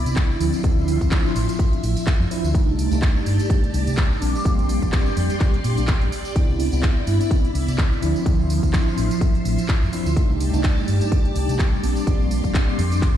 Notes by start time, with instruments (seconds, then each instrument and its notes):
Already playing: tine electric piano B3 C4 D4 E4, string machine E4 D5 B5
0.06 fingered electric bass C3, closed hi-hat, tambourine
0.16 kick, clap, closed hi-hat, tambourine
0.30 tambourine
0.40 fingered electric bass D2, tine electric piano F3 C4 D4 E4, string machine F3 E5 C6, open hi-hat, tambourine
0.53 tambourine
0.63 fingered electric bass D2, tine electric piano F3 C4 D4 E4, kick, closed hi-hat, tambourine
0.78 tambourine
0.88 open hi-hat, tambourine
1.01 fingered electric bass D2, tine electric piano F3 C4 D4 E4, kick, closed hi-hat, tambourine
1.11 kick, clap, closed hi-hat, tambourine
1.26 tambourine
1.35 fingered electric bass A1, open hi-hat, tambourine
1.49 closed hi-hat, tambourine
1.59 kick, closed hi-hat, tambourine
1.73 closed hi-hat, tambourine
1.83 fingered electric bass A1, open hi-hat, tambourine
1.97 closed hi-hat, tambourine
2.07 kick, clap, closed hi-hat, tambourine
2.20 fingered electric bass F2, tambourine
2.31 tine electric piano F3 C4 D4 E4, muted fingered electric bass stroke, open hi-hat, tambourine
2.44 fingered electric bass D2, tambourine
2.54 fingered electric bass C2, tine electric piano G3 A3 D4 D#4, string machine G4 D5 A5, kick, closed hi-hat, tambourine
2.69 tambourine
2.79 open hi-hat, tambourine
2.91 fingered electric bass C2, tine electric piano G3 A3 D4 D#4, closed hi-hat, tambourine
3.02 kick, clap, closed hi-hat, tambourine
3.16 tambourine
3.26 fingered electric bass G2, open hi-hat, tambourine
3.39 closed hi-hat, tambourine
3.49 kick, closed hi-hat, tambourine
3.64 closed hi-hat, tambourine
3.74 fingered electric bass C2, open hi-hat, tambourine
3.87 fingered electric bass C3, closed hi-hat, tambourine
3.97 kick, clap, closed hi-hat, tambourine
4.11 tambourine
4.21 fingered electric bass A#1, tine electric piano G3 A#3 C4 D4, string machine C6, open hi-hat, tambourine
4.35 tambourine
4.44 fingered electric bass A#1, tine electric piano G3 A#3 C4 D4, kick, closed hi-hat, tambourine
4.59 closed hi-hat, tambourine
4.69 open hi-hat, tambourine
4.82 fingered electric bass A#1, tine electric piano G3 A#3 C4 D4, kick, closed hi-hat, tambourine
4.92 kick, clap, closed hi-hat, tambourine
5.06 tambourine
5.17 fingered electric bass F2, open hi-hat, tambourine
5.30 closed hi-hat, tambourine
5.40 kick, clap, closed hi-hat, tambourine
5.53 closed hi-hat, tambourine
5.64 fingered electric bass A#2, open hi-hat, tambourine
5.77 fingered electric bass A#1, tine electric piano G3 A#3 C4 D4, closed hi-hat, tambourine
5.88 kick, clap, closed hi-hat, tambourine
6.01 tine electric piano G3 A#3 C4 D4, closed hi-hat, tambourine
6.12 open hi-hat, tambourine
6.25 tambourine
6.36 fingered electric bass C2, tine electric piano B3 C4 D4 E4, string machine E4 B5, kick, closed hi-hat, tambourine
6.49 tambourine
6.60 open hi-hat, tambourine
6.72 fingered electric bass C2, tine electric piano B3 C4 D4 E4, closed hi-hat, tambourine
6.83 kick, clap, closed hi-hat, tambourine
6.96 tambourine
7.07 fingered electric bass G2, open hi-hat, tambourine
7.21 closed hi-hat, tambourine
7.30 kick, closed hi-hat, tambourine
7.45 closed hi-hat, tambourine
7.55 fingered electric bass C2, open hi-hat, tambourine
7.68 fingered electric bass C3, closed hi-hat, tambourine
7.78 kick, clap, closed hi-hat, tambourine
7.92 tambourine
8.01 fingered electric bass D2, tine electric piano F3 C4 D4 E4, string machine F3 E5 C6, open hi-hat, tambourine
8.16 tambourine
8.26 fingered electric bass D2, tine electric piano F3 C4 D4 E4, kick, closed hi-hat, tambourine
8.40 tambourine
8.50 open hi-hat, tambourine
8.63 fingered electric bass D2, tine electric piano F3 C4 D4 E4, kick, closed hi-hat, tambourine
8.73 kick, clap, closed hi-hat, tambourine
8.87 tambourine
8.98 fingered electric bass A1, open hi-hat, tambourine
9.11 closed hi-hat, tambourine
9.21 kick, closed hi-hat, tambourine
9.34 closed hi-hat, tambourine
9.45 fingered electric bass A1, open hi-hat, tambourine
9.58 closed hi-hat, tambourine
9.69 kick, clap, closed hi-hat, tambourine
9.82 fingered electric bass F2, tambourine
9.92 tine electric piano F3 C4 D4 E4, muted fingered electric bass stroke, open hi-hat, tambourine
10.06 fingered electric bass D2, tambourine
10.16 fingered electric bass C2, tine electric piano G3 A3 D4 D#4, string machine G4 D5 A5, kick, closed hi-hat, tambourine
10.30 tambourine
10.40 open hi-hat, tambourine
10.53 fingered electric bass C2, tine electric piano G3 A3 D4 D#4, closed hi-hat, tambourine
10.64 kick, clap, closed hi-hat, tambourine
10.77 tambourine
10.88 fingered electric bass G2, open hi-hat, tambourine
11.01 closed hi-hat, tambourine
11.12 kick, closed hi-hat, tambourine
11.25 closed hi-hat, tambourine
11.35 fingered electric bass C2, open hi-hat, tambourine
11.49 fingered electric bass C3, closed hi-hat, tambourine
11.59 kick, clap, closed hi-hat, tambourine
11.73 tambourine
11.83 fingered electric bass A#1, tine electric piano G3 A#3 C4 D4, string machine G4 D5 C6, open hi-hat, tambourine
11.96 tambourine
12.07 fingered electric bass A#1, tine electric piano G3 A#3 C4 D4, kick, closed hi-hat, tambourine
12.19 tambourine
12.31 open hi-hat, tambourine
12.44 fingered electric bass A#1, tine electric piano G3 A#3 C4 D4, kick, closed hi-hat, tambourine
12.54 kick, clap, closed hi-hat, tambourine
12.69 tambourine
12.79 fingered electric bass F2, open hi-hat, tambourine
12.92 closed hi-hat, tambourine
13.02 fingered electric bass G1, kick, clap, closed hi-hat, tambourine